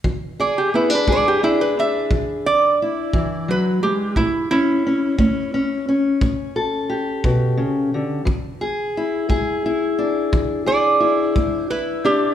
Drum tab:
BD |o--o--o--o--|o--o--o--o--|o--o--o--o--|